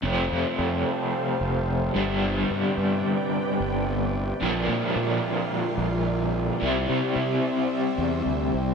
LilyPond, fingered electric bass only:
\new Staff \with { instrumentName = "Fingered electric bass" } { \clef bass \time 4/4 \key f \major \tempo 4 = 110 f,,8 f,16 r16 f,8 r4 f,,4 g,,8~ | g,,8 g,16 r16 g,8 r4 g,,4. | bes,,8 bes,16 r16 bes,8 r4 bes,,4. | c,8 c16 r16 c8 r4 e,8 d,8 c,8 | }